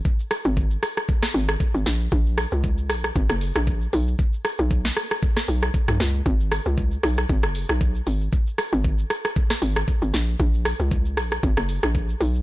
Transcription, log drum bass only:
X:1
M:4/4
L:1/16
Q:"Swing 16ths" 1/4=116
K:F#mix
V:1 name="Log drum bass" clef=bass
z3 G,,,3 z4 G,,,2 z G,,, A,,,2 | A,,,3 C,,3 A,,,2 G,,, F,,,2 A,,,3 B,,,2 | z3 B,,,3 z4 B,,,2 z B,,, C,,2 | G,,,3 C,,3 B,,,2 G,,, F,,,2 B,,,3 G,,,2 |
z3 G,,,3 z4 G,,,2 z G,,, A,,,2 | A,,,3 C,,3 A,,,2 G,,, F,,,2 A,,,3 B,,,2 |]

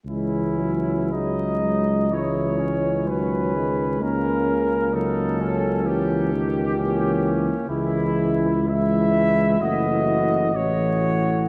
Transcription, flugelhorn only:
X:1
M:4/4
L:1/8
Q:1/4=64
K:C#m
V:1 name="Flugelhorn"
C2 D2 E C3 | C2 D C2 z C2 | E2 E2 F2 F2 |]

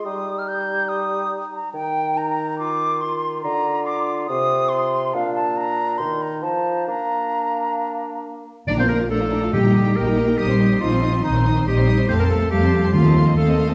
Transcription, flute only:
X:1
M:4/4
L:1/16
Q:1/4=141
K:Eb
V:1 name="Flute"
e'3 f' g'4 e'6 b2 | [K:Bb] g4 b4 d'4 c'4 | b4 d'4 e'4 c'4 | f2 a2 b4 c'2 b2 a4 |
b12 z4 | z16 | z16 | z16 |]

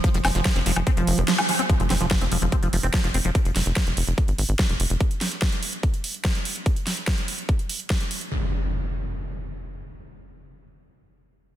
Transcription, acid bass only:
X:1
M:4/4
L:1/16
Q:1/4=145
K:Fm
V:1 name="Acid bass" clef=bass
F, F, C F, F, C F, F, C F,2 F F, F F, C | F, F, C F, F, C F, F, C F, F, C F, F, C F, | z16 | z16 |
z16 | z16 | z16 |]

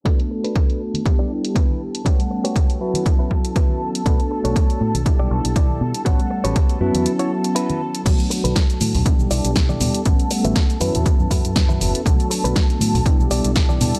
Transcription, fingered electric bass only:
X:1
M:4/4
L:1/16
Q:"Swing 16ths" 1/4=120
K:Bm
V:1 name="Fingered electric bass" clef=bass
z16 | z16 | B,,, z2 B,,, z2 A,, B,,,2 B,,, B,,, B,,,3 B,, z | A,,, z2 A,,, z2 F,, E,, z8 |
B,,, z2 B,,, z2 A,, B,,,2 B,,, B,,, B,,,3 B,, z | A,,, z2 A,,, z2 F,, E,,2 F,, F,, F,,3 F,,, z | B,,, z2 B,,, z2 A,, B,,,2 B,,, B,,, B,,,3 B,, z |]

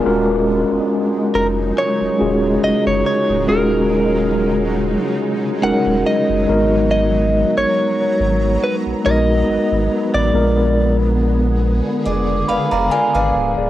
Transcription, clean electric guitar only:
X:1
M:4/4
L:1/16
Q:"Swing 16ths" 1/4=70
K:Ebm
V:1 name="Clean electric guitar"
z6 B2 d4 e d d2 | B8- B2 g2 e4 | e3 d4- d c2 e4- e =d- | =d3 z12 z |]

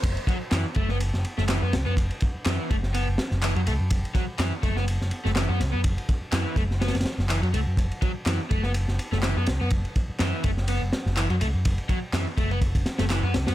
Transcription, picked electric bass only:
X:1
M:4/4
L:1/16
Q:"Swing 16ths" 1/4=124
K:F#m
V:1 name="Picked electric bass" clef=bass
F,,, z3 F,, z F,,,3 F,,, z F,,,2 F,, C,, F,, | F,,, z3 F,, z F,,,3 F,,, z F,,,2 F,, C,, F,, | F,,, z3 F,, z F,,,3 F,,, z F,,,2 F,, C,, F,, | F,,, z3 F,, z F,,,3 F,,, z F,,,2 F,, C,, F,, |
F,,, z3 F,, z F,,,3 F,,, z F,,,2 F,, C,, F,, | F,,, z3 F,, z F,,,3 F,,, z F,,,2 F,, C,, F,, | F,,, z3 F,, z F,,,3 F,,, z F,,,2 F,, C,, F,, |]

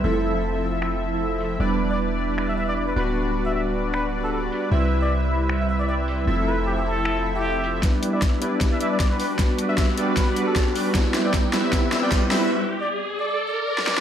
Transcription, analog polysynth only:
X:1
M:4/4
L:1/16
Q:"Swing 16ths" 1/4=154
K:G
V:1 name="Analog polysynth"
[=F,CEAe]16 | [G,DEBd]12- [G,DEBd]2 [G,DFBd]2- | [G,DFBd]16 | [G,CEBe]16 |
[=F,CEAe]16 | [G,Dd]3 [G,DEBe]3 [G,DEBd]3 [G,DEBd]3 [G,D]4 | [G,DBd]3 [G,DFBe]3 [G,DFBd]3 [G,DFBd]3 [G,DFd]4 | [G,CEe]3 [G,CEBg]3 [G,CEBe]2 [G,CEBe]3 [G,CEBg]3 [G,CEBe]2 |
z16 |]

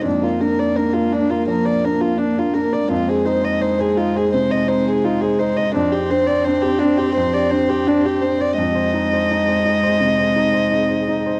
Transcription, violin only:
X:1
M:4/4
L:1/16
Q:1/4=84
K:Fdor
V:1 name="Violin"
D F B d B F D F B d B F D F B d | F A c e c A F A c e c A F A c e | D G c d c G D G c d c G D G c d | e16 |]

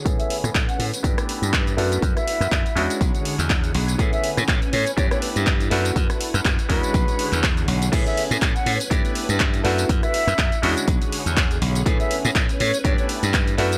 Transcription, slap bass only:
X:1
M:4/4
L:1/16
Q:"Swing 16ths" 1/4=122
K:A
V:1 name="Slap bass" clef=bass
A,, z2 A,, A,, z A,, z =G,, z2 G,,3 F,,2 | F,, z2 F,, F,, z E,, z B,,, z2 E,,3 B,,,2 | A,, z2 A,, A,, z A,, z =G,, z2 G,,3 F,,2 | F,, z2 F,, F,, z E,, z B,,, z2 E,,3 B,,,2 |
A,, z2 A,, A,, z A,, z =G,, z2 G,,3 F,,2 | F,, z2 F,, F,, z E,, z B,,, z2 E,,3 B,,,2 | A,, z2 A,, A,, z A,, z =G,, z2 G,,3 F,,2 |]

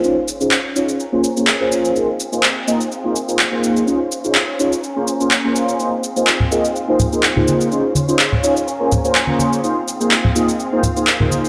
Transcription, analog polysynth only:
X:1
M:4/4
L:1/16
Q:"Swing 16ths" 1/4=125
K:Ab
V:1 name="Analog polysynth"
[DEFAc] z2 [DEFAc] z2 [DEFAd] z2 [B,DFAc] z [B,DFAc] z [B,DFAc]3 | [B,EFAc] z2 [B,EFAc] z2 [B,EFAe] z2 [B,EFAc] z [B,EFAc] z [B,EFAc]3 | [DEFAc] z2 [DEFAc] z2 [DEFAd] z2 [B,DFAc] z [B,DFAc] z [B,DFAc]3 | [B,EFAc] z2 [B,EFAc] z2 [B,EFAe] z2 [B,EFAc] z [B,EFAc] z [B,EFAc]3 |
[DEFAc] z2 [DEFAc] z2 [DEFAd] z2 [B,DFAc] z [B,DFAc] z [B,DFAc]3 | [B,EFAc] z2 [B,EFAc] z2 [B,EFAe] z2 [B,EFAc] z [B,EFAc] z [B,EFAc]3 |]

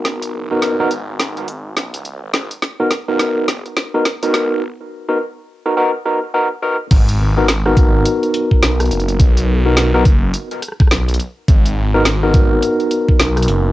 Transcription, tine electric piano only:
X:1
M:4/4
L:1/16
Q:"Swing 16ths" 1/4=105
K:G#m
V:1 name="Tine electric piano"
[B,DFA]3 [B,DFA]2 [B,DFA] z8 z2 | z3 [B,DFA] z [B,DFA]3 z3 [B,DFA] z [B,DFA]3 | z3 [B,DFA] z3 [B,DFA] [B,DFA] z [B,DFA] z [B,DFA] z [B,DFA] z | z3 [B,DFA] z [B,DFA]8- [B,DFA]3- |
[B,DFA]3 [B,DFA]2 [B,DFA] z8 z2 | z3 [B,DFA] z [B,DFA]8- [B,DFA]3 |]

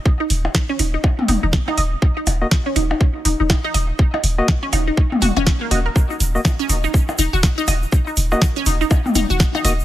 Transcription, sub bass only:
X:1
M:4/4
L:1/16
Q:"Swing 16ths" 1/4=122
K:Ebm
V:1 name="Sub bass" clef=bass
z2 E,,, z3 E,,, z3 E,,, E,,, z2 E,,, z | z2 E,,, z3 E,,, z3 E,,, E,,, z2 E,,, z | z2 E,,, z3 E,,, z3 E,,, E,,, z2 E,,, z | z2 E,,, z3 E,,, z3 E,,, E,,, z2 E,,, z |
z2 E,,, z3 E,,, z3 E,,, E,,, z2 E,,, z |]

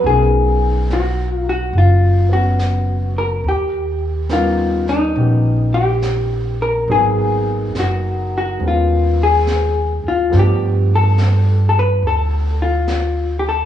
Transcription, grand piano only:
X:1
M:4/4
L:1/8
Q:"Swing" 1/4=70
K:D#m
V:1 name="Grand piano"
[F,B,CDA]4- [F,B,CDA] [B,CF]3 | z2 [=G,B,CDA]2 [B,C=G]4 | [F,A,B,DG]4 [G,B,C]4 | [=F,=A,B,=D=G]8 |]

